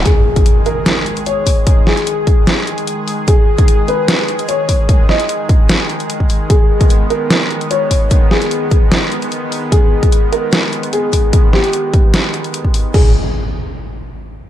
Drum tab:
CC |----------------|----------------|----------------|----------------|
HH |x--xx-x-x-xxx-o-|x--xx-x-x-xxx-o-|x--xx-x-x-xxx-o-|x--xx-x-x-xxx-o-|
SD |--------o-------|--o-----o-------|--------o-------|--o-----o-------|
BD |o--o----------o-|o-----o---------|o--o----------o-|o-----o------o--|

CC |----------------|----------------|----------------|----------------|
HH |x--xx-x-x-xxx-o-|x--xx-x-x-xxx-o-|x--xx-x-x-xxx-o-|x--xx-x-x-xxx-o-|
SD |--------o-------|--o-----o-------|--------o-------|--o-----o-------|
BD |o--o----------o-|o-----o---------|o--o----------o-|o-----o------o--|

CC |x---------------|
HH |----------------|
SD |----------------|
BD |o---------------|